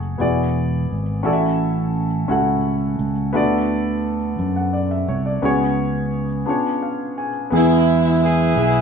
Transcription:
Already playing: fingered electric bass F#1, grand piano A3 E4 F#4 G#4 C#5
0.18 fingered electric bass E1, grand piano E3 B3 E4 F#4 G#4 D5
0.91 fingered electric bass G#1
1.23 fingered electric bass A1, grand piano A2 C#4 E4 F#4 A4 D5
1.33 grand piano E5
2.28 fingered electric bass C#2, grand piano C#4 E4 F#4 A4 F#5
2.99 fingered electric bass C#2
3.33 fingered electric bass D2, grand piano D3 B3 E4 F#4 A4 D5
4.39 fingered electric bass F#2
4.56 grand piano F#5
4.73 grand piano D5
4.91 grand piano E5
5.08 fingered electric bass C2, grand piano C#5
5.26 grand piano D5
5.42 fingered electric bass C#2, grand piano C#3 B3 C#4 F#4 G#4 C#5
6.46 grand piano C#3 B3 D4 F4 G#4 C#5
6.82 grand piano F5
7.18 grand piano G#5
7.50 fingered electric bass E2, grand piano E3 B3 E4 G#4, saxophone section G#3 B3 E4
8.22 saxophone section B3 E4 G#4
8.54 fingered electric bass B1, grand piano B3 E4 G#4

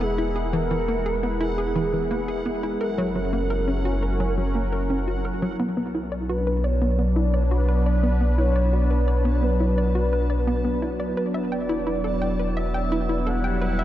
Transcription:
Already playing: sub bass E1, analog synth pad G#3 B3 E4 G#4, synth texture F#5
0.01 synth arpeggio sound B3, analog synth lead G#4
0.18 synth arpeggio sound E4
0.36 synth arpeggio sound G#4
0.53 synth arpeggio sound E3, analog synth lead A#4
0.71 synth arpeggio sound E3
0.88 synth arpeggio sound A#3
1.06 synth arpeggio sound G#4
1.23 synth arpeggio sound B3, analog synth lead B4
1.41 synth arpeggio sound E4, analog synth lead G#4
1.58 synth arpeggio sound G#4
1.76 synth arpeggio sound E3
1.93 synth arpeggio sound E3
2.11 synth arpeggio sound A#3
2.28 synth arpeggio sound G#4
2.46 synth arpeggio sound B3
2.63 synth arpeggio sound E4
2.80 sub bass F#1, analog synth pad F#3, analog synth lead A#4, synth arpeggio sound A#4
2.98 synth arpeggio sound F#3
3.05 analog synth pad C#4
3.16 synth arpeggio sound F#3
3.33 synth arpeggio sound A#3
3.50 synth arpeggio sound A#4
3.68 synth arpeggio sound C#4
3.85 synth arpeggio sound F#4
4.03 synth arpeggio sound A#4, analog synth pad A#4
4.20 synth arpeggio sound F#3
4.38 synth arpeggio sound F#3
4.55 synth arpeggio sound A#3
4.72 synth arpeggio sound A#4
4.90 synth arpeggio sound C#4
5.08 synth arpeggio sound F#4
5.25 synth arpeggio sound A#4
5.42 synth arpeggio sound F#3
5.59 sub bass B1, synth arpeggio sound B3, synth texture A5
5.77 synth arpeggio sound B3
5.95 synth arpeggio sound E4
6.09 analog synth pad D4, synth arpeggio sound D5
6.29 analog synth pad B3, synth arpeggio sound F#4, analog synth lead B4
6.34 analog synth pad B4
6.47 synth arpeggio sound B4
6.64 analog synth lead C#5, synth arpeggio sound D5
6.82 synth arpeggio sound B3
6.99 synth arpeggio sound B3, analog synth lead D5
7.16 synth arpeggio sound E4
7.33 analog synth lead C#5, synth arpeggio sound D5
7.51 synth arpeggio sound F#4
7.68 synth arpeggio sound B4, analog synth lead D5
7.86 synth arpeggio sound D5
8.03 synth arpeggio sound B3
8.21 synth arpeggio sound B3
8.38 synth arpeggio sound E4, analog synth lead C#5
8.56 synth arpeggio sound D5
8.73 synth arpeggio sound F#4, analog synth lead D5
8.91 synth arpeggio sound B4
9.08 analog synth lead C#5, synth arpeggio sound D5
9.25 synth arpeggio sound B3
9.43 synth arpeggio sound B3, analog synth lead B4
9.60 synth arpeggio sound E4
9.78 synth arpeggio sound D5
9.95 synth arpeggio sound F#4
10.13 synth arpeggio sound B4
10.30 synth arpeggio sound D5
10.47 synth arpeggio sound B3
10.64 synth arpeggio sound B3
10.82 synth arpeggio sound E4
11.00 synth arpeggio sound D5
11.17 sub bass E1, synth arpeggio sound B4
11.34 synth arpeggio sound E5
11.52 analog synth lead D5, synth arpeggio sound G5
11.69 synth arpeggio sound E4
11.87 synth arpeggio sound E4
12.04 analog synth pad E4, synth arpeggio sound A4
12.22 synth arpeggio sound G5
12.39 synth arpeggio sound B4
12.57 synth arpeggio sound E5, analog synth lead E5
12.74 synth arpeggio sound G5
12.92 synth arpeggio sound E4
13.09 analog synth pad G3, synth arpeggio sound E4
13.27 synth arpeggio sound A4, analog synth lead F#5
13.44 synth arpeggio sound G5
13.62 synth arpeggio sound B4
13.79 synth arpeggio sound E5

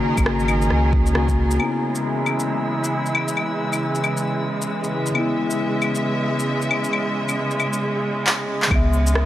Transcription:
Already playing: tine electric piano C#3 A#3 F#4, string section D#3 D#4 G#4 A#4, synth texture C#4 C#5
0.17 sub bass G#1, kick, claves, shaker
0.26 cross-stick
0.40 shaker
0.48 claves, shaker
0.62 shaker
0.71 sub bass C#2, cross-stick
0.93 kick
1.06 shaker
1.13 tine electric piano C#3 A#3 F#4, cross-stick
1.29 kick, shaker
1.51 shaker
1.56 tine electric piano C#3 B3, string section C#3, synth texture E3 E6
1.60 claves
1.85 string section E4
1.90 string section G#3
1.95 shaker
2.26 claves, shaker
2.40 shaker
2.84 shaker
3.06 shaker
3.15 claves
3.28 shaker
3.37 claves
3.73 claves, shaker
3.95 shaker
4.04 claves, shaker
4.17 shaker
4.62 shaker
4.84 shaker
4.92 string section E5
5.06 shaker
5.11 tine electric piano C#3 B3, claves
5.19 tine electric piano E4
5.51 shaker
5.82 claves, shaker
5.95 shaker
6.40 shaker
6.62 shaker
6.71 claves
6.84 shaker
6.93 claves
7.29 claves, shaker
7.51 shaker
7.60 claves, shaker
7.73 shaker
8.27 clap
8.62 clap
8.67 sub bass C#2, tine electric piano C#3 B3, kick, claves
8.75 tine electric piano E5
8.93 cabasa
9.07 shaker
9.15 string section E4, cross-stick

